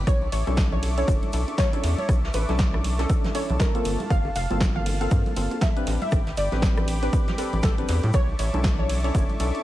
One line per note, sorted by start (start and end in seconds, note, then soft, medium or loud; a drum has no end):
0.07 0.27 B1 loud
0.07 0.27 C#5 loud
0.07 3.81 E5 medium
0.07 5.83 A5 medium
0.07 3.81 C#6 medium
0.07 3.81 D6 medium
0.07 kick loud
0.07 cross-stick medium
0.07 closed hi-hat medium
0.07 shaker medium
0.22 high bongo soft
0.32 0.43 A1 loud
0.32 0.61 C#5 medium
0.32 open hi-hat loud
0.32 ride medium
0.32 shaker medium
0.47 1.04 B1 medium
0.47 0.94 C#4 medium
0.47 0.94 D4 medium
0.47 0.94 E4 medium
0.47 0.94 A4 medium
0.47 closed hi-hat soft
0.47 high bongo medium
0.47 high conga medium
0.57 kick loud
0.57 snare loud
0.57 closed hi-hat medium
0.57 shaker medium
0.72 0.90 C#5 medium
0.72 low conga loud
0.83 open hi-hat loud
0.83 open hi-hat medium
0.83 ride medium
0.83 high bongo medium
0.97 1.31 C#4 medium
0.97 1.31 D4 medium
0.97 1.31 E4 medium
0.97 1.31 A4 loud
0.97 1.15 C#5 medium
0.97 closed hi-hat medium
1.07 1.19 F#1 loud
1.07 kick loud
1.07 closed hi-hat medium
1.07 high bongo medium
1.07 shaker medium
1.23 closed hi-hat soft
1.23 high conga medium
1.33 1.44 B1 medium
1.33 1.70 C#4 medium
1.33 1.70 D4 medium
1.33 1.70 E4 medium
1.33 1.70 A4 medium
1.33 open hi-hat loud
1.33 ride medium
1.33 shaker medium
1.48 closed hi-hat soft
1.48 high bongo medium
1.58 1.87 C#5 loud
1.58 kick loud
1.58 snare loud
1.58 closed hi-hat medium
1.58 high conga medium
1.58 shaker loud
1.73 1.97 C#4 loud
1.73 1.97 D4 medium
1.73 1.97 E4 medium
1.73 1.97 A4 loud
1.73 closed hi-hat medium
1.73 high bongo medium
1.83 1.95 E2 medium
1.83 snare medium
1.83 open hi-hat loud
1.83 ride medium
1.83 shaker medium
1.98 2.26 C#5 loud
1.98 closed hi-hat soft
1.98 high conga medium
2.09 2.29 B1 loud
2.09 kick loud
2.09 cross-stick medium
2.09 closed hi-hat medium
2.09 high bongo medium
2.09 shaker medium
2.24 snare medium
2.33 2.45 A1 loud
2.33 2.54 B4 medium
2.33 open hi-hat loud
2.33 ride medium
2.33 high bongo medium
2.33 shaker medium
2.49 3.05 B1 medium
2.49 2.96 C#4 medium
2.49 2.96 D4 medium
2.49 2.96 E4 medium
2.49 2.96 A4 loud
2.49 snare soft
2.49 closed hi-hat soft
2.49 high conga medium
2.59 kick loud
2.59 snare loud
2.59 closed hi-hat medium
2.59 shaker medium
2.73 cross-stick medium
2.73 high bongo medium
2.73 low conga loud
2.84 open hi-hat loud
2.84 ride medium
2.84 high conga medium
2.84 shaker medium
2.99 3.32 C#4 medium
2.99 3.32 D4 medium
2.99 3.32 E4 medium
2.99 3.27 A4 medium
2.99 3.32 A4 loud
2.99 snare soft
2.99 closed hi-hat medium
2.99 high bongo medium
3.10 kick loud
3.10 closed hi-hat medium
3.10 shaker medium
3.24 snare medium
3.24 closed hi-hat soft
3.24 high conga medium
3.24 low conga medium
3.34 3.71 C#4 medium
3.34 3.71 D4 medium
3.34 3.71 E4 medium
3.34 3.71 A4 medium
3.34 3.55 C#5 medium
3.34 open hi-hat loud
3.34 ride medium
3.34 high bongo soft
3.34 shaker medium
3.49 3.57 B1 loud
3.49 closed hi-hat soft
3.49 low conga medium
3.60 3.99 A#4 loud
3.60 kick loud
3.60 snare loud
3.60 closed hi-hat medium
3.60 high bongo medium
3.60 high conga medium
3.60 shaker loud
3.75 3.99 A#3 loud
3.75 3.99 C4 medium
3.75 3.99 F4 medium
3.75 3.99 A4 loud
3.75 closed hi-hat medium
3.85 3.96 G1 medium
3.85 5.85 F5 medium
3.85 open hi-hat loud
3.85 ride medium
3.85 shaker medium
4.00 closed hi-hat soft
4.00 high bongo medium
4.00 high conga loud
4.10 4.30 G1 loud
4.10 4.30 F5 loud
4.10 kick loud
4.10 cross-stick medium
4.10 closed hi-hat medium
4.10 shaker medium
4.25 high bongo medium
4.36 4.47 F1 loud
4.36 4.64 F5 medium
4.36 open hi-hat loud
4.36 ride medium
4.36 shaker medium
4.50 5.07 G1 medium
4.50 4.97 A#3 medium
4.50 4.97 C4 medium
4.50 4.97 F4 medium
4.50 4.98 A4 medium
4.50 closed hi-hat soft
4.50 high conga loud
4.60 kick loud
4.60 snare loud
4.60 closed hi-hat medium
4.60 high bongo medium
4.60 shaker loud
4.76 4.93 F5 medium
4.76 low conga loud
4.86 open hi-hat medium
4.86 open hi-hat loud
4.86 ride medium
4.86 high bongo medium
4.86 high conga medium
5.01 5.34 A#3 medium
5.01 5.34 C4 medium
5.01 5.34 F4 medium
5.01 5.34 A4 loud
5.01 5.18 F5 medium
5.01 closed hi-hat medium
5.11 5.22 G2 loud
5.11 kick loud
5.11 closed hi-hat medium
5.11 shaker loud
5.26 closed hi-hat soft
5.26 high bongo soft
5.26 high conga loud
5.36 5.48 G1 medium
5.36 5.73 A#3 medium
5.36 5.73 C4 medium
5.36 5.73 F4 medium
5.36 5.73 A4 medium
5.36 open hi-hat loud
5.36 ride medium
5.36 shaker medium
5.51 closed hi-hat soft
5.51 high bongo medium
5.61 5.90 E5 medium
5.61 kick loud
5.61 snare loud
5.61 closed hi-hat medium
5.61 high conga medium
5.61 shaker medium
5.76 6.01 C4 loud
5.76 6.01 D4 medium
5.76 6.01 G4 medium
5.76 6.01 B4 loud
5.76 closed hi-hat medium
5.87 5.98 A1 medium
5.87 8.12 G5 medium
5.87 8.12 B5 medium
5.87 8.12 D6 medium
5.87 snare medium
5.87 open hi-hat loud
5.87 ride medium
5.87 high bongo soft
5.87 shaker medium
6.02 6.29 E5 medium
6.02 closed hi-hat soft
6.02 high conga loud
6.11 6.32 A1 medium
6.11 kick loud
6.11 cross-stick medium
6.11 closed hi-hat medium
6.11 high bongo medium
6.11 shaker medium
6.27 snare soft
6.27 closed hi-hat soft
6.37 6.48 G1 loud
6.37 6.57 D5 medium
6.37 open hi-hat loud
6.37 ride medium
6.37 shaker medium
6.52 7.09 A1 medium
6.52 6.99 C4 medium
6.52 6.99 D4 medium
6.52 6.99 G4 medium
6.52 6.99 B4 medium
6.52 snare soft
6.52 closed hi-hat soft
6.52 high bongo soft
6.52 high conga medium
6.62 kick loud
6.62 snare loud
6.62 closed hi-hat medium
6.62 shaker medium
6.77 cross-stick medium
6.77 closed hi-hat soft
6.77 high bongo medium
6.77 low conga medium
6.88 open hi-hat loud
6.88 ride medium
6.88 shaker medium
7.02 7.36 C4 medium
7.02 7.36 D4 medium
7.02 7.36 G4 medium
7.02 7.30 B4 loud
7.02 7.36 B4 loud
7.02 snare soft
7.02 closed hi-hat medium
7.13 kick loud
7.13 closed hi-hat medium
7.13 high bongo soft
7.13 shaker medium
7.28 snare medium
7.28 closed hi-hat soft
7.28 high conga loud
7.28 low conga medium
7.38 7.75 C4 medium
7.38 7.75 D4 medium
7.38 7.75 G4 medium
7.38 7.58 A4 medium
7.38 7.75 B4 medium
7.38 open hi-hat loud
7.38 ride medium
7.38 high bongo medium
7.38 shaker medium
7.53 7.61 A1 loud
7.53 closed hi-hat soft
7.53 low conga medium
7.63 7.83 A1 medium
7.63 8.03 A4 loud
7.63 kick loud
7.63 snare loud
7.63 closed hi-hat medium
7.63 high conga medium
7.63 shaker medium
7.78 8.02 C4 loud
7.78 8.02 D4 medium
7.78 8.02 G4 medium
7.78 8.03 B4 loud
7.78 closed hi-hat medium
7.78 high bongo soft
7.88 8.00 E2 medium
7.88 snare medium
7.88 open hi-hat loud
7.88 ride medium
7.88 shaker medium
8.03 8.11 A2 loud
8.03 closed hi-hat soft
8.03 high bongo medium
8.03 high conga medium
8.13 8.34 B1 loud
8.13 8.34 C#5 loud
8.13 9.63 E5 medium
8.13 9.63 A5 medium
8.13 9.63 C#6 medium
8.13 9.63 D6 medium
8.13 kick loud
8.13 cross-stick medium
8.13 closed hi-hat medium
8.13 shaker medium
8.29 high bongo soft
8.39 8.50 A1 loud
8.39 8.67 C#5 medium
8.39 open hi-hat loud
8.39 ride medium
8.39 shaker medium
8.53 9.11 B1 medium
8.53 9.01 C#4 medium
8.53 9.01 D4 medium
8.53 9.01 E4 medium
8.53 9.01 A4 loud
8.53 closed hi-hat soft
8.53 high bongo medium
8.53 high conga loud
8.64 kick loud
8.64 snare loud
8.64 closed hi-hat medium
8.64 shaker loud
8.79 8.96 C#5 medium
8.79 low conga medium
8.89 open hi-hat medium
8.89 open hi-hat loud
8.89 ride medium
8.89 high bongo soft
8.89 high conga medium
9.04 9.37 C#4 medium
9.04 9.37 D4 medium
9.04 9.37 E4 medium
9.04 9.38 A4 loud
9.04 9.22 C#5 medium
9.04 closed hi-hat medium
9.15 9.26 F#1 loud
9.15 kick loud
9.15 closed hi-hat medium
9.15 high bongo medium
9.15 shaker loud
9.30 closed hi-hat soft
9.30 high conga medium
9.40 9.51 B1 medium
9.40 9.63 C#4 medium
9.40 9.63 D4 medium
9.40 9.63 E4 medium
9.40 9.63 A4 medium
9.40 open hi-hat loud
9.40 ride medium
9.40 shaker medium
9.54 closed hi-hat soft
9.54 high bongo medium